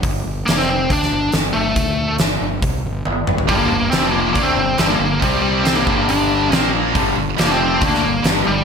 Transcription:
0.03 G1, kick, open hi-hat
0.27 G1
0.46 F1 A#3, snare, open hi-hat
0.58 C4, snare
0.90 D2 D4, kick, open hi-hat
1.03 snare
1.13 G1
1.32 G1, snare, open hi-hat
1.53 G1 A3
1.76 D2, kick, open hi-hat
2.18 G1, snare, open hi-hat
2.41 G1
2.62 C2, kick, open hi-hat
2.85 G1
3.05 G1, high tom
3.27 G1, mid tom
3.38 floor tom
3.49 G1 G2 D3 G3, kick, open hi-hat
3.57 A#3
3.71 G1 G2 D3
3.91 F1 F2 C3 F3 C4, snare, open hi-hat
4.11 A#3
4.34 D2 D3 A3 A#3 D4, kick, open hi-hat
4.43 C4
4.57 G1 G2 D3
4.78 G1 G2 D3 C4, snare, open hi-hat
4.82 D3 G3
4.89 A#3
5.00 G1 G2 D3
5.22 C2 C3 G3 C4, kick, open hi-hat
5.41 G3
5.64 C4, snare, open hi-hat
5.74 A#3
5.87 G1 G2 D3 G3, kick
6.08 D4, open hi-hat
6.51 A#1 A#2 F3 A#3 C4, snare, open hi-hat
6.95 G1 G2 D3 G3, kick, open hi-hat
7.17 G1 G2 D3
7.37 F1 F2 C3 F3 A#3, snare, open hi-hat
7.49 C4, snare
7.81 D2 D3 A3 D4, kick, open hi-hat
7.87 A#3
7.94 snare
8.03 G1 G2 D3
8.23 G1 G2 G3, snare, open hi-hat
8.27 G2 D3 G3
8.47 G1 G2 D3 G3

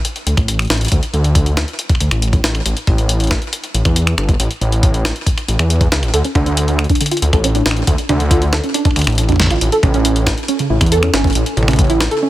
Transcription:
0.05 closed hi-hat
0.16 closed hi-hat
0.26 D2, closed hi-hat
0.37 A1, finger snap, kick, closed hi-hat
0.48 closed hi-hat
0.59 finger snap, closed hi-hat
0.62 closed hi-hat
0.65 closed hi-hat
0.67 A1, finger snap, snare, closed hi-hat
0.70 closed hi-hat
0.73 closed hi-hat
0.76 closed hi-hat
0.77 closed hi-hat
0.81 closed hi-hat
0.85 closed hi-hat
0.88 D2, kick, closed hi-hat
0.92 closed hi-hat
1.03 closed hi-hat
1.13 D2, closed hi-hat
1.24 closed hi-hat
1.35 kick, closed hi-hat
1.46 closed hi-hat
1.57 finger snap, snare, closed hi-hat
1.68 closed hi-hat
1.79 closed hi-hat
1.90 kick, closed hi-hat
1.95 finger snap
2.00 D2, closed hi-hat
2.11 A1, finger snap, closed hi-hat
2.22 closed hi-hat
2.33 kick, closed hi-hat
2.44 A1, snare, closed hi-hat
2.55 finger snap, closed hi-hat
2.66 A1, closed hi-hat
2.77 closed hi-hat
2.87 A1, kick, closed hi-hat
2.98 closed hi-hat
3.09 closed hi-hat
3.20 closed hi-hat
3.24 closed hi-hat
3.27 finger snap, kick, snare, closed hi-hat
3.31 closed hi-hat
3.38 closed hi-hat
3.42 closed hi-hat
3.53 closed hi-hat
3.64 closed hi-hat
3.74 A1, closed hi-hat
3.85 E2, finger snap, kick, closed hi-hat
3.96 closed hi-hat
4.07 finger snap, closed hi-hat
4.18 G1, finger snap, closed hi-hat
4.29 kick, closed hi-hat
4.40 A1, closed hi-hat
4.51 closed hi-hat
4.61 A1, closed hi-hat
4.72 closed hi-hat
4.83 kick, closed hi-hat
4.94 closed hi-hat
5.05 finger snap, snare, closed hi-hat
5.16 closed hi-hat
5.26 kick, closed hi-hat
5.38 finger snap, closed hi-hat
5.48 A1, closed hi-hat
5.59 E2, finger snap, closed hi-hat
5.70 closed hi-hat
5.81 kick, closed hi-hat
5.92 C#2, snare, closed hi-hat
6.03 A1, finger snap, closed hi-hat
6.14 D2 A4, closed hi-hat
6.25 C#4, closed hi-hat
6.35 D2 D4, kick, closed hi-hat, mid tom
6.46 D4, closed hi-hat
6.57 closed hi-hat
6.68 closed hi-hat
6.79 finger snap, closed hi-hat
6.84 closed hi-hat
6.90 D4, kick, closed hi-hat
6.95 closed hi-hat
7.01 D3, closed hi-hat
7.06 closed hi-hat
7.11 F4, closed hi-hat
7.17 closed hi-hat
7.22 D2, closed hi-hat
7.33 A1 A4, finger snap, kick, closed hi-hat
7.44 C#4, closed hi-hat
7.55 D4, closed hi-hat
7.66 A1 D4, snare, closed hi-hat
7.71 finger snap
7.77 closed hi-hat
7.87 D2, kick, closed hi-hat
7.98 closed hi-hat
8.09 D2 D4, closed hi-hat, mid tom
8.20 D3, closed hi-hat
8.31 F4, kick, closed hi-hat
8.42 closed hi-hat
8.53 A4, finger snap, snare
8.64 C#4, closed hi-hat
8.74 D4, closed hi-hat
8.85 D4, finger snap, kick, closed hi-hat
8.91 finger snap
8.96 D2, finger snap, closed hi-hat
8.99 finger snap, closed hi-hat
9.02 closed hi-hat
9.04 A1, finger snap, closed hi-hat
9.07 closed hi-hat
9.10 closed hi-hat
9.12 closed hi-hat
9.15 closed hi-hat
9.18 closed hi-hat
9.29 D4, kick, closed hi-hat
9.32 kick
9.36 kick
9.39 A1 D3, kick, snare, closed hi-hat
9.43 kick
9.47 F4, finger snap, kick, closed hi-hat
9.61 A1, closed hi-hat
9.72 A4, closed hi-hat
9.83 A1 C#4, kick, closed hi-hat, mid tom
9.94 C#4, closed hi-hat
10.05 C#4, closed hi-hat
10.16 closed hi-hat
10.26 finger snap, kick, snare, closed hi-hat
10.38 closed hi-hat
10.48 C#4, closed hi-hat
10.59 C#3, closed hi-hat
10.70 A1 E4
10.81 E2, finger snap, kick, closed hi-hat
10.86 closed hi-hat
10.92 A4, closed hi-hat
11.03 C#4, finger snap, closed hi-hat
11.13 G1 C#4, finger snap, snare, closed hi-hat
11.24 C#4, kick, closed hi-hat
11.27 closed hi-hat
11.30 closed hi-hat
11.33 A1, closed hi-hat
11.35 closed hi-hat
11.46 closed hi-hat
11.57 A1, closed hi-hat, mid tom
11.63 mid tom
11.68 C#4, finger snap, closed hi-hat, mid tom
11.71 closed hi-hat
11.73 closed hi-hat, mid tom
11.76 C#3, kick, closed hi-hat
11.79 closed hi-hat
11.82 closed hi-hat
11.84 closed hi-hat
11.87 E4, closed hi-hat
11.90 closed hi-hat
12.01 finger snap, snare, closed hi-hat
12.11 A4, closed hi-hat
12.22 C#4

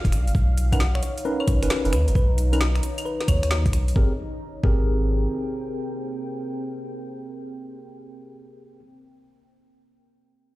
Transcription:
Already playing: F4 D5 F5 G5
0.05 D#1, kick, closed hi-hat
0.12 B1 D#4, finger snap, closed hi-hat, cabasa
0.27 F#1, closed hi-hat, cabasa
0.35 B1, kick, cabasa
0.58 closed hi-hat, cabasa
0.72 C#4 D#4 A#4 B4 F#5 A#5, kick, closed hi-hat, cabasa, claves
0.80 snare, cabasa
0.86 C#5
0.95 C#5, finger snap
1.03 C#5, closed hi-hat, cabasa
1.18 closed hi-hat, cabasa
1.25 C#4 D#4 A#4 B4, cabasa
1.40 C#5, claves
1.48 B1 C#5, kick, closed hi-hat, cabasa
1.63 F#1 C#4 D#4 A#4 B4, finger snap, closed hi-hat, cabasa
1.70 B4, snare, cabasa
1.85 F#1 C#4 D#4 A#4 B4, closed hi-hat
1.93 D#2 B4, finger snap, closed hi-hat, cabasa
2.08 F#1 B4, closed hi-hat, cabasa
2.15 B1 B4, kick, cabasa
2.38 closed hi-hat, cabasa
2.53 C#4 D#4 A#4 B4, closed hi-hat, cabasa, claves
2.61 snare, cabasa
2.75 finger snap, closed hi-hat
2.83 closed hi-hat, cabasa
2.98 closed hi-hat, cabasa, claves
3.05 B4, cabasa
3.21 snare, closed hi-hat
3.28 D#2 C#5, kick, closed hi-hat, cabasa, claves
3.43 D#2 C#5, finger snap, closed hi-hat, cabasa
3.51 snare, cabasa
3.66 B1, kick, closed hi-hat
3.73 finger snap, closed hi-hat, cabasa
3.88 closed hi-hat, cabasa
3.96 G#1 C4 G4 G#4 A#4, kick
4.05 A#4
4.13 G5
4.64 G#1 C4 G4 G#4 A#4, kick

